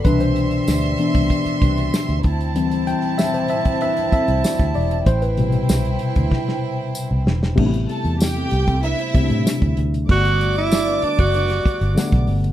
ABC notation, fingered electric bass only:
X:1
M:4/4
L:1/16
Q:1/4=96
K:G
V:1 name="Fingered electric bass" clef=bass
C,,4 D,,2 z C,, z2 C,,2 z D,, D,,2- | D,,3 z8 C,, z D,, E,,,2 | A,,,4 C,,2 z D,, z4 z C,, E,,,2 | A,,,2 z E,,3 C,,3 z C,, A,, z D,, D,,2 |
G,,,6 z F,,,3 z G,,, z B,,, G,,,2 |]